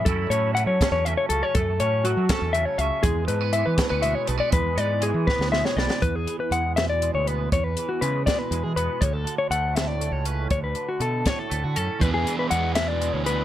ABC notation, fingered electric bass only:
X:1
M:6/8
L:1/16
Q:3/8=80
K:Emix
V:1 name="Fingered electric bass" clef=bass
F,,2 A,,3 F, z E,,2 z C,, z | F,,2 A,,3 F, z E,,2 z C,, z | E,,2 G,,3 E, z D,,2 z B,,, z | E,,2 G,,3 E, z D,,2 z B,,, z |
E,,2 z2 E,,4- E,, D,,3 | E,,2 z2 C,2 z2 E,, E, E,, z | D,,2 z2 D,,4- D,, C,,3 | D,,2 z2 B,,2 z2 D,, D, F,, z |
E,,2 z2 E,,4- E,, D,,3 |]